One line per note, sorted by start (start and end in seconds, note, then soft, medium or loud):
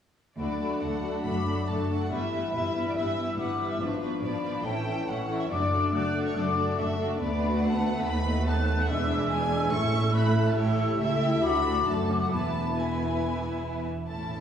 0.37 0.74 D2 soft
0.37 2.06 F#3 soft
0.37 0.59 A3 soft
0.37 2.06 D4 soft
0.37 0.59 D4 soft
0.37 0.58 F#4 soft
0.37 0.58 A4 soft
0.37 0.79 D5 soft
0.37 0.78 B5 soft
0.59 0.81 A3 soft
0.59 0.81 D4 soft
0.59 0.80 F#4 soft
0.59 0.80 A4 soft
0.81 1.17 D2 soft
0.81 1.03 A3 soft
0.81 1.03 D4 soft
0.81 1.01 F#4 soft
0.81 1.01 A4 soft
0.81 1.25 F#5 medium
0.81 1.25 A5 soft
1.02 1.24 A3 soft
1.02 1.24 D4 soft
1.02 1.22 F#4 soft
1.02 1.22 A4 soft
1.23 1.60 F#1 soft
1.23 1.60 F#2 soft
1.23 1.46 A3 soft
1.23 1.46 D4 soft
1.23 1.45 F#4 soft
1.23 1.44 A4 soft
1.23 1.66 B5 medium
1.23 1.67 D6 soft
1.46 1.67 A3 soft
1.46 1.67 D4 soft
1.46 1.66 F#4 soft
1.46 1.66 A4 soft
1.67 2.03 F#1 soft
1.67 2.03 F#2 soft
1.67 1.89 A3 soft
1.67 1.89 D4 soft
1.67 1.87 F#4 soft
1.67 1.87 A4 soft
1.67 1.99 A5 soft
1.67 2.09 C#6 soft
1.89 2.10 A3 soft
1.89 2.10 D4 soft
1.89 2.09 F#4 soft
1.89 2.09 A4 soft
2.00 2.10 F#5 soft
2.09 2.46 G1 medium
2.09 2.46 G2 medium
2.09 3.77 E3 soft
2.09 2.31 G3 soft
2.09 2.31 B3 soft
2.09 2.30 E4 soft
2.09 3.77 E4 soft
2.09 2.30 B4 soft
2.09 2.53 E5 medium
2.09 2.93 B5 soft
2.31 2.53 G3 soft
2.31 2.53 B3 soft
2.31 2.52 E4 soft
2.31 2.52 B4 soft
2.53 2.88 G1 medium
2.53 2.88 G2 soft
2.53 2.73 G3 soft
2.53 2.74 B3 soft
2.53 2.73 E4 soft
2.53 2.73 B4 soft
2.53 2.84 E5 medium
2.74 2.95 G3 soft
2.74 2.95 B3 soft
2.74 2.95 E4 soft
2.74 2.95 B4 soft
2.86 2.96 D5 medium
2.95 3.31 G1 soft
2.95 3.30 G2 medium
2.95 3.16 G3 soft
2.95 3.16 B3 soft
2.95 3.15 E4 soft
2.95 3.15 B4 soft
2.95 3.37 E5 medium
2.95 3.36 E6 soft
3.16 3.38 G3 soft
3.16 3.38 B3 soft
3.16 3.36 E4 soft
3.16 3.36 B4 soft
3.37 3.73 G1 soft
3.37 3.73 G2 soft
3.37 3.58 G3 soft
3.37 3.58 B3 soft
3.37 3.58 E4 soft
3.37 3.58 B4 soft
3.37 3.68 F#5 soft
3.37 3.79 D6 soft
3.59 3.80 G3 soft
3.59 3.79 B3 soft
3.59 3.80 E4 soft
3.59 3.79 B4 soft
3.69 3.80 E5 soft
3.79 4.15 G#1 soft
3.79 4.15 G#2 soft
3.79 4.63 F3 soft
3.79 4.01 F3 soft
3.79 4.00 B3 soft
3.79 4.00 D4 soft
3.79 4.63 D4 soft
3.79 4.22 B4 soft
3.79 4.00 B4 soft
3.79 4.21 C#6 soft
4.01 4.21 F3 soft
4.01 4.21 B3 soft
4.01 4.20 D4 soft
4.01 4.20 B4 soft
4.22 4.57 G#1 soft
4.22 4.58 G#2 soft
4.22 4.42 F3 soft
4.22 4.42 B3 soft
4.22 4.41 D4 soft
4.22 4.41 B4 soft
4.22 4.64 D5 medium
4.22 4.64 B5 soft
4.42 4.64 F3 soft
4.42 4.64 B3 soft
4.42 4.64 D4 soft
4.42 4.63 B4 soft
4.63 5.00 A1 medium
4.63 5.00 A2 medium
4.63 4.84 E3 soft
4.63 5.50 E3 soft
4.63 4.85 C#4 soft
4.63 5.50 C#4 soft
4.63 4.84 E4 soft
4.63 4.84 A4 soft
4.63 5.07 G5 medium
4.63 5.07 A5 soft
4.85 5.06 E3 soft
4.85 5.06 C#4 soft
4.85 5.06 E4 soft
4.85 5.05 A4 soft
5.07 5.43 A1 medium
5.07 5.43 A2 medium
5.07 5.27 E3 soft
5.07 5.28 C#4 soft
5.07 5.26 E4 soft
5.07 5.26 A4 soft
5.07 5.39 F#5 medium
5.07 5.50 C#6 soft
5.27 5.50 E3 soft
5.27 5.50 C#4 soft
5.27 5.49 E4 soft
5.27 5.48 A4 soft
5.40 5.50 E5 soft
5.49 5.85 F#1 medium
5.49 5.86 F#2 medium
5.49 5.69 A3 soft
5.49 8.72 A3 soft
5.49 7.15 D4 soft
5.49 5.69 D4 soft
5.49 5.70 F#4 soft
5.49 5.70 A4 soft
5.49 5.92 D5 medium
5.49 5.92 D6 medium
5.71 5.91 A3 soft
5.71 5.91 D4 soft
5.71 5.91 F#4 soft
5.71 5.91 A4 soft
5.92 6.28 F#1 medium
5.92 6.28 F#2 medium
5.92 6.13 A3 soft
5.92 6.12 D4 soft
5.92 6.13 F#4 soft
5.92 6.12 A4 soft
5.92 6.24 D5 medium
5.92 6.35 F#6 medium
6.13 6.34 A3 soft
6.13 6.34 D4 soft
6.13 6.33 F#4 soft
6.13 6.33 A4 soft
6.26 6.35 C#5 medium
6.34 6.70 F#1 medium
6.34 6.70 F#2 medium
6.34 6.55 A3 soft
6.34 6.55 D4 soft
6.34 6.55 F#4 soft
6.34 6.55 A4 soft
6.34 6.77 D5 medium
6.34 6.77 D6 soft
6.56 6.76 A3 soft
6.56 6.76 D4 soft
6.56 6.75 F#4 soft
6.56 6.75 A4 soft
6.76 7.12 F#1 medium
6.76 7.12 F#2 medium
6.76 6.97 A3 soft
6.76 6.96 D4 soft
6.76 6.97 F#4 soft
6.76 6.97 A4 soft
6.76 7.08 E5 medium
6.76 7.00 C#6 medium
6.98 7.17 A3 soft
6.98 7.18 D4 medium
6.98 7.19 F#4 soft
6.98 7.19 A4 soft
7.09 7.17 D5 soft
7.18 8.00 D2 medium
7.18 8.83 A3 medium
7.18 7.29 A3 soft
7.18 8.84 B3 soft
7.18 8.72 B3 soft
7.18 9.67 B4 medium
7.18 7.60 D5 medium
7.18 7.61 B5 medium
7.30 7.40 B3 soft
7.40 7.51 D4 soft
7.50 7.61 F#4 soft
7.61 7.72 D4 soft
7.61 8.04 F#5 medium
7.61 8.04 A5 medium
7.71 7.82 B3 soft
7.81 7.92 A3 soft
7.94 8.04 B3 soft
8.03 8.86 D#2 medium
8.03 8.13 A3 medium
8.03 8.46 F#5 medium
8.03 8.46 B5 medium
8.13 8.24 B3 soft
8.25 8.35 D#4 soft
8.35 8.46 F#4 soft
8.45 8.56 D#4 soft
8.45 8.77 A5 medium
8.45 8.88 F#6 medium
8.56 8.67 B3 soft
8.67 8.77 A3 soft
8.77 8.88 B3 soft
8.77 8.89 F#5 medium
8.87 9.71 E1 medium
8.87 9.71 E2 medium
8.87 8.97 G#3 medium
8.87 9.72 G#3 medium
8.87 9.72 G#3 soft
8.87 9.70 D4 soft
8.87 9.29 E5 medium
8.87 10.12 E6 medium
8.98 9.09 B3 soft
9.10 9.20 D4 medium
9.19 9.29 E4 soft
9.29 9.40 D4 soft
9.29 9.70 G#5 medium
9.40 9.50 B3 soft
9.50 9.61 G#3 soft
9.61 9.71 B3 soft
9.71 10.54 A1 medium
9.71 10.54 A2 medium
9.71 12.29 A3 medium
9.71 9.81 A3 soft
9.71 10.56 A3 soft
9.71 10.57 C#4 soft
9.71 10.56 E4 medium
9.71 10.55 A4 medium
9.71 10.14 C#6 medium
9.82 9.92 C#4 soft
9.92 10.03 E4 soft
10.04 10.14 C#4 soft
10.13 10.25 A3 soft
10.13 10.45 B5 medium
10.13 10.56 F#6 medium
10.26 10.36 C#4 soft
10.36 10.46 E4 soft
10.46 10.56 C#4 soft
10.46 10.57 A5 medium
10.55 10.95 A1 medium
10.55 10.95 A2 medium
10.55 10.96 A3 medium
10.55 10.96 E4 soft
10.55 11.42 G4 medium
10.55 10.96 G4 soft
10.55 10.96 A4 medium
10.55 10.98 C#5 medium
10.55 11.40 E6 medium
10.98 11.41 C#2 soft
10.98 11.41 C#2 medium
10.98 11.41 A3 soft
10.98 11.41 E4 soft
10.98 11.41 G4 soft
10.98 11.40 A4 soft
10.98 11.42 E5 medium
11.41 11.84 D2 soft
11.41 11.84 D2 medium
11.41 11.85 A3 soft
11.41 11.85 D4 soft
11.41 12.29 F#4 medium
11.41 11.84 F#4 soft
11.41 11.84 A4 medium
11.41 11.86 B5 medium
11.41 12.30 D6 medium
11.85 12.29 F#1 soft
11.85 12.30 F#2 soft
11.85 12.29 A3 soft
11.85 11.95 D4 soft
11.85 12.29 F#4 soft
11.85 12.29 A4 soft
11.85 12.19 A5 medium
12.09 12.17 C#4 soft
12.20 12.30 F#5 soft
12.29 13.88 E1 soft
12.29 13.87 E2 soft
12.29 12.74 E3 soft
12.29 13.86 B3 soft
12.29 12.74 B3 soft
12.29 13.83 E4 soft
12.29 12.73 E4 soft
12.29 12.73 B4 soft
12.29 12.74 A5 medium
12.29 13.83 B5 soft
12.74 13.86 E3 soft
12.74 13.86 B3 soft
12.74 13.85 E4 soft
12.74 13.85 B4 soft
12.74 13.86 G#5 medium
14.07 14.40 A1 soft
14.07 14.40 A2 soft
14.07 14.40 E3 soft
14.07 14.40 C#4 soft
14.07 14.40 E4 soft
14.07 14.40 A4 soft
14.07 14.40 A5 medium